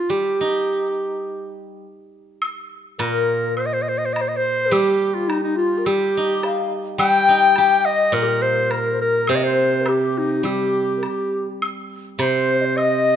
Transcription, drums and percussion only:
2.42 high woodblock medium
3.00 low woodblock soft
3.57 high woodblock soft
4.16 low woodblock soft
4.72 high woodblock soft
5.30 low woodblock soft
5.86 high woodblock soft
6.43 low woodblock soft
6.99 high woodblock medium
7.56 low woodblock soft
8.13 high woodblock soft
8.71 low woodblock soft
9.27 high woodblock medium
9.86 high woodblock soft
9.86 low woodblock soft
10.45 high woodblock soft
11.03 low woodblock soft
11.62 high woodblock medium
12.19 low woodblock soft
12.78 high woodblock soft

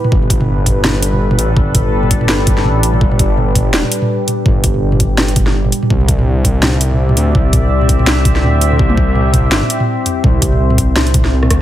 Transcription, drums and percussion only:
0.04 mid tom medium
0.12 kick loud
0.22 mid tom medium
0.30 kick loud
0.30 closed hi-hat medium
0.41 mid tom medium
0.66 kick medium
0.66 closed hi-hat medium
0.66 mid tom medium
0.84 snare loud
0.84 mid tom medium
1.03 closed hi-hat medium
1.13 mid tom medium
1.31 mid tom medium
1.39 closed hi-hat medium
1.57 kick loud
1.57 mid tom medium
1.75 kick loud
1.75 closed hi-hat medium
1.75 mid tom medium
2.03 mid tom medium
2.11 kick medium
2.11 closed hi-hat medium
2.21 mid tom medium
2.29 snare loud
2.47 kick loud
2.47 closed hi-hat medium
2.47 mid tom medium
2.57 snare soft
2.65 mid tom medium
2.83 closed hi-hat medium
2.93 mid tom medium
3.01 kick loud
3.12 mid tom medium
3.19 kick loud
3.19 closed hi-hat medium
3.37 mid tom medium
3.55 kick medium
3.55 closed hi-hat medium
3.55 mid tom medium
3.74 snare loud
3.84 mid tom medium
3.92 closed hi-hat medium
4.02 mid tom medium
4.28 closed hi-hat medium
4.28 mid tom medium
4.46 kick loud
4.46 mid tom medium
4.64 kick loud
4.64 closed hi-hat medium
4.74 mid tom medium
4.92 mid tom medium
5.00 kick medium
5.00 closed hi-hat medium
5.18 snare loud
5.18 mid tom medium
5.28 closed hi-hat soft
5.36 kick loud
5.36 closed hi-hat medium
5.36 mid tom medium
5.47 snare soft
5.65 mid tom medium
5.72 closed hi-hat medium
5.83 mid tom medium
5.90 kick loud
6.01 mid tom medium
6.08 kick loud
6.08 closed hi-hat medium
6.19 mid tom medium
6.45 kick medium
6.45 closed hi-hat medium
6.45 mid tom medium
6.63 snare loud
6.63 mid tom medium
6.81 closed hi-hat medium
6.91 mid tom medium
7.09 mid tom medium
7.17 closed hi-hat medium
7.35 kick loud
7.35 mid tom medium
7.53 kick loud
7.53 closed hi-hat medium
7.53 mid tom medium
7.81 mid tom medium
7.89 kick medium
7.89 closed hi-hat medium
7.99 mid tom medium
8.07 snare loud
8.25 kick loud
8.25 closed hi-hat medium
8.25 mid tom medium
8.36 snare soft
8.43 mid tom medium
8.61 closed hi-hat medium
8.72 mid tom medium
8.79 kick loud
8.90 mid tom medium
8.98 kick loud
9.15 mid tom medium
9.34 kick medium
9.34 closed hi-hat medium
9.34 mid tom medium
9.52 snare loud
9.62 mid tom medium
9.70 closed hi-hat medium
9.80 mid tom medium
10.06 closed hi-hat medium
10.06 mid tom medium
10.24 kick loud
10.24 mid tom medium
10.42 kick loud
10.42 closed hi-hat medium
10.52 mid tom medium
10.70 mid tom medium
10.78 kick medium
10.78 closed hi-hat medium
10.96 snare loud
10.96 mid tom medium
11.07 closed hi-hat soft
11.14 kick loud
11.14 closed hi-hat medium
11.14 mid tom medium
11.25 snare soft
11.43 cross-stick medium
11.43 mid tom medium
11.51 kick medium
11.51 cross-stick medium
11.51 closed hi-hat medium

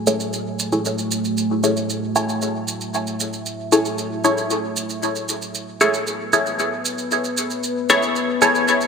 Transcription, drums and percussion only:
0.07 shaker medium
0.20 shaker soft
0.33 shaker soft
0.59 shaker medium
0.72 shaker soft
0.85 shaker soft
0.98 shaker soft
1.11 shaker medium
1.25 shaker soft
1.37 shaker soft
1.64 shaker medium
1.77 shaker soft
1.90 shaker soft
2.16 shaker medium
2.29 shaker soft
2.42 shaker soft
2.68 shaker medium
2.81 shaker soft
2.94 shaker soft
3.07 shaker soft
3.20 shaker medium
3.33 shaker soft
3.46 shaker soft
3.72 shaker medium
3.85 shaker soft
3.98 shaker soft
4.24 shaker medium
4.37 shaker soft
4.50 shaker soft
4.77 shaker medium
4.90 shaker soft
5.03 shaker soft
5.16 shaker soft
5.29 shaker medium
5.42 shaker soft
5.55 shaker soft
5.81 shaker medium
5.94 shaker soft
6.07 shaker soft
6.33 shaker medium
6.46 shaker soft
6.59 shaker soft
6.85 shaker medium
6.98 shaker soft
7.11 shaker soft
7.25 shaker soft
7.37 shaker medium
7.51 shaker soft
7.64 shaker soft
7.90 shaker medium
8.03 shaker soft
8.16 shaker soft
8.42 shaker medium
8.55 shaker soft
8.68 shaker soft
8.81 shaker soft

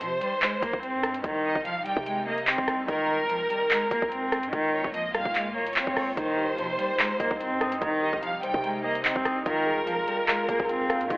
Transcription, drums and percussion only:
0.01 closed hi-hat medium
0.21 closed hi-hat medium
0.42 clap loud
0.62 kick loud
0.62 closed hi-hat medium
0.73 kick loud
0.83 closed hi-hat medium
1.03 cross-stick loud
1.03 closed hi-hat medium
1.14 closed hi-hat medium
1.24 kick loud
1.24 closed hi-hat medium
1.55 kick medium
1.65 closed hi-hat medium
1.86 closed hi-hat medium
1.97 kick loud
2.06 closed hi-hat medium
2.38 closed hi-hat medium
2.47 clap loud
2.58 kick loud
2.68 cross-stick loud
2.68 closed hi-hat medium
2.88 kick loud
2.88 closed hi-hat medium
3.30 closed hi-hat medium
3.50 closed hi-hat medium
3.71 clap loud
3.91 kick loud
3.91 closed hi-hat medium
4.02 kick loud
4.12 closed hi-hat medium
4.32 cross-stick loud
4.32 closed hi-hat medium
4.43 closed hi-hat medium
4.53 kick loud
4.53 closed hi-hat medium
4.84 kick loud
4.94 closed hi-hat medium
5.15 cross-stick loud
5.15 closed hi-hat medium
5.25 kick loud
5.35 clap medium
5.35 closed hi-hat medium
5.67 closed hi-hat medium
5.73 clap loud
5.73 closed hi-hat medium
5.80 closed hi-hat soft
5.87 kick loud
5.97 cross-stick loud
5.97 open hi-hat medium
6.17 kick loud
6.17 closed hi-hat medium
6.58 closed hi-hat medium
6.79 closed hi-hat medium
6.99 clap loud
7.20 kick loud
7.20 closed hi-hat medium
7.31 kick loud
7.41 closed hi-hat medium
7.61 cross-stick loud
7.61 closed hi-hat medium
7.72 closed hi-hat medium
7.82 kick loud
7.82 closed hi-hat medium
8.13 kick loud
8.23 closed hi-hat medium
8.43 closed hi-hat medium
8.54 kick loud
8.64 closed hi-hat medium
8.95 closed hi-hat medium
9.05 clap loud
9.16 kick loud
9.25 cross-stick loud
9.25 closed hi-hat medium
9.46 kick loud
9.46 closed hi-hat medium
9.87 closed hi-hat medium
10.08 closed hi-hat medium
10.28 clap loud
10.49 kick loud
10.49 closed hi-hat medium
10.60 kick loud
10.69 closed hi-hat medium
10.90 cross-stick loud
10.90 closed hi-hat medium
11.01 closed hi-hat medium
11.10 kick loud
11.10 closed hi-hat medium

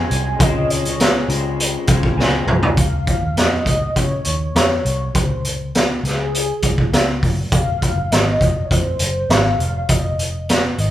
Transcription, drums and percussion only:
0.11 closed hi-hat medium
0.40 kick loud
0.40 closed hi-hat medium
0.70 closed hi-hat medium
0.85 closed hi-hat medium
1.00 snare loud
1.00 closed hi-hat medium
1.29 closed hi-hat medium
1.60 closed hi-hat medium
1.87 kick medium
1.87 closed hi-hat medium
2.03 kick medium
2.20 snare medium
2.48 mid tom medium
2.63 floor tom medium
2.77 kick loud
2.77 closed hi-hat loud
3.07 kick medium
3.07 closed hi-hat medium
3.37 snare medium
3.37 closed hi-hat medium
3.66 kick medium
3.66 closed hi-hat medium
3.96 kick medium
3.96 closed hi-hat medium
4.25 closed hi-hat medium
4.56 snare loud
4.56 closed hi-hat medium
4.85 closed hi-hat medium
5.15 kick loud
5.15 closed hi-hat medium
5.45 closed hi-hat medium
5.75 snare loud
5.75 closed hi-hat medium
6.05 snare soft
6.05 closed hi-hat medium
6.34 closed hi-hat medium
6.62 kick medium
6.62 closed hi-hat medium
6.78 kick medium
6.93 snare loud
6.93 closed hi-hat medium
7.23 kick medium
7.23 open hi-hat soft
7.52 kick loud
7.52 closed hi-hat medium
7.82 kick medium
7.82 closed hi-hat medium
8.12 snare loud
8.12 closed hi-hat medium
8.41 kick medium
8.41 closed hi-hat medium
8.71 kick medium
8.71 closed hi-hat medium
8.99 closed hi-hat medium
9.30 snare loud
9.30 closed hi-hat medium
9.60 closed hi-hat medium
9.89 kick loud
9.89 closed hi-hat medium
10.19 closed hi-hat medium
10.49 snare loud
10.49 closed hi-hat medium
10.78 closed hi-hat medium

